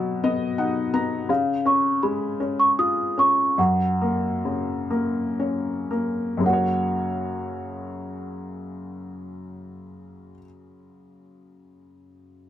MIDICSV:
0, 0, Header, 1, 3, 480
1, 0, Start_track
1, 0, Key_signature, 6, "major"
1, 0, Tempo, 721154
1, 863, Time_signature, 3, 2, 24, 8
1, 1347, Tempo, 756620
1, 1827, Tempo, 798935
1, 2307, Tempo, 855920
1, 2787, Tempo, 949367
1, 3267, Tempo, 1063830
1, 3747, Tempo, 1115242
1, 6350, End_track
2, 0, Start_track
2, 0, Title_t, "Celesta"
2, 0, Program_c, 0, 8
2, 0, Note_on_c, 0, 78, 62
2, 124, Note_off_c, 0, 78, 0
2, 865, Note_on_c, 0, 77, 70
2, 1088, Note_off_c, 0, 77, 0
2, 1108, Note_on_c, 0, 85, 75
2, 1333, Note_off_c, 0, 85, 0
2, 1351, Note_on_c, 0, 83, 67
2, 1710, Note_on_c, 0, 85, 79
2, 1717, Note_off_c, 0, 83, 0
2, 1764, Note_off_c, 0, 85, 0
2, 1833, Note_on_c, 0, 87, 86
2, 2074, Note_off_c, 0, 87, 0
2, 2074, Note_on_c, 0, 85, 89
2, 2312, Note_on_c, 0, 78, 69
2, 2319, Note_off_c, 0, 85, 0
2, 3484, Note_off_c, 0, 78, 0
2, 3753, Note_on_c, 0, 78, 67
2, 5444, Note_off_c, 0, 78, 0
2, 6350, End_track
3, 0, Start_track
3, 0, Title_t, "Felt piano"
3, 0, Program_c, 1, 0
3, 0, Control_c, 1, 64, 127
3, 0, Note_on_c, 1, 47, 54
3, 0, Note_on_c, 1, 54, 44
3, 0, Note_on_c, 1, 59, 46
3, 147, Note_off_c, 1, 59, 0
3, 157, Note_on_c, 1, 59, 51
3, 157, Note_on_c, 1, 75, 59
3, 374, Note_off_c, 1, 75, 0
3, 388, Note_on_c, 1, 78, 58
3, 391, Note_on_c, 1, 63, 46
3, 608, Note_off_c, 1, 78, 0
3, 613, Note_off_c, 1, 59, 0
3, 623, Note_on_c, 1, 59, 45
3, 624, Note_on_c, 1, 82, 58
3, 839, Note_off_c, 1, 54, 0
3, 841, Note_off_c, 1, 47, 0
3, 846, Note_off_c, 1, 82, 0
3, 851, Note_off_c, 1, 63, 0
3, 855, Note_off_c, 1, 59, 0
3, 859, Note_on_c, 1, 49, 56
3, 872, Control_c, 1, 64, 0
3, 1006, Control_c, 1, 64, 127
3, 1101, Note_on_c, 1, 61, 49
3, 1352, Note_on_c, 1, 56, 45
3, 1577, Note_off_c, 1, 61, 0
3, 1586, Note_on_c, 1, 61, 48
3, 1832, Note_on_c, 1, 65, 51
3, 2055, Note_off_c, 1, 61, 0
3, 2064, Note_on_c, 1, 61, 46
3, 2282, Note_off_c, 1, 49, 0
3, 2285, Note_off_c, 1, 56, 0
3, 2295, Note_off_c, 1, 65, 0
3, 2300, Note_off_c, 1, 61, 0
3, 2307, Note_on_c, 1, 42, 57
3, 2315, Control_c, 1, 64, 0
3, 2420, Control_c, 1, 64, 127
3, 2551, Note_on_c, 1, 58, 45
3, 2795, Note_on_c, 1, 49, 38
3, 3016, Note_off_c, 1, 58, 0
3, 3024, Note_on_c, 1, 58, 43
3, 3272, Note_on_c, 1, 61, 44
3, 3496, Note_off_c, 1, 58, 0
3, 3502, Note_on_c, 1, 58, 40
3, 3707, Note_off_c, 1, 42, 0
3, 3714, Note_on_c, 1, 42, 45
3, 3720, Note_off_c, 1, 49, 0
3, 3727, Note_on_c, 1, 49, 43
3, 3735, Note_off_c, 1, 58, 0
3, 3735, Note_off_c, 1, 61, 0
3, 3742, Note_on_c, 1, 58, 40
3, 3752, Control_c, 1, 64, 0
3, 3756, Note_on_c, 1, 61, 38
3, 3767, Note_on_c, 1, 66, 41
3, 3782, Note_on_c, 1, 73, 50
3, 3827, Control_c, 1, 64, 127
3, 5407, Note_off_c, 1, 42, 0
3, 5420, Note_off_c, 1, 49, 0
3, 5434, Note_off_c, 1, 58, 0
3, 5448, Note_off_c, 1, 61, 0
3, 5458, Note_off_c, 1, 66, 0
3, 5474, Note_off_c, 1, 73, 0
3, 6350, End_track
0, 0, End_of_file